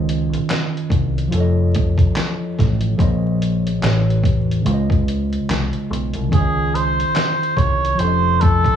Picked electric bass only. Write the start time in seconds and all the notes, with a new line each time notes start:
Already playing: C#2
0.90 C2
1.32 F1
2.59 A1
2.99 A#1
3.82 A1
4.24 E1
4.66 C#2
5.49 C2
5.91 B1
6.15 C2
6.32 C#2
7.57 C2
8.00 F1